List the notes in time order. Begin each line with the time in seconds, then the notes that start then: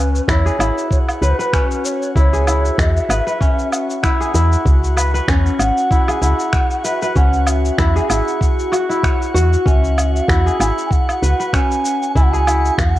Already playing: C#2 C#4 F#4 B4 F#5
0.15 shaker
0.28 E2 E4 C#5, finger snap, kick, shaker
0.46 G#4, shaker
0.59 G#1 E4, low woodblock, shaker
0.78 shaker
0.91 C#5, kick, shaker
1.08 low woodblock, shaker
1.22 C#2 B4, shaker
1.39 B4, shaker
1.53 C#4, finger snap, kick, shaker
1.71 shaker
1.85 C#5, shaker
2.02 shaker
2.16 C#2 E4 C#5, kick, shaker
2.33 G#4, shaker
2.47 E4, low woodblock, shaker
2.65 shaker
2.78 E2 E5, finger snap, kick, shaker
2.97 shaker
3.09 G#1 B4, low woodblock, shaker
3.27 B4, shaker
3.41 C#4, kick, shaker
3.59 shaker
3.72 low woodblock, shaker
3.90 shaker
4.03 E4, finger snap, kick, shaker
4.20 G#4, shaker
4.34 E2 E4, shaker
4.52 shaker
4.65 C#2, kick, shaker
4.84 shaker
4.97 B4, low woodblock, shaker
5.14 B4, shaker
5.28 E2 C#4, finger snap, kick, shaker
5.46 shaker
5.59 G#1 F#5, low woodblock, shaker
5.77 shaker
5.91 E4, kick, shaker
6.08 G#4, low woodblock, shaker
6.22 C#2 E4 F#5, shaker
6.40 shaker
6.53 finger snap, kick, shaker
6.71 shaker
6.84 B4 E5, shaker
7.02 B4, shaker
7.15 C#2 C#4 F#5, kick, shaker
7.33 shaker
7.47 F#5, low woodblock, shaker
7.51 E5
7.65 shaker
7.78 E2 E4, finger snap, kick, shaker
7.96 G#4, shaker
8.09 G#1 E4, low woodblock, shaker
8.28 shaker
8.41 kick, shaker
8.59 shaker
8.72 F#4, low woodblock, shaker
8.89 E4, shaker
9.03 C#5, finger snap, kick, shaker
9.22 shaker
9.34 E2 F#4, shaker
9.53 shaker
9.65 C#2 C#4 E5, kick, shaker
9.84 shaker
9.98 low woodblock, shaker
10.15 F#5, shaker
10.28 E2 E4, finger snap, kick, shaker
10.46 G#4, shaker
10.60 G#1 E4 G#5, low woodblock, shaker
10.78 shaker
10.85 G#5
10.91 F#5, kick, shaker
11.09 low woodblock, shaker
11.22 C#2 B4, shaker
11.40 B4, shaker
11.53 C#4 G#5, finger snap, kick, shaker
11.71 shaker
11.85 shaker
12.03 shaker
12.15 C#2 E4 G#5, kick, shaker
12.23 F#5
12.31 G#4 A5, shaker
12.36 G#5
12.47 E4, low woodblock, shaker
12.65 shaker
12.78 E2 F5, finger snap, kick, shaker
12.89 F#5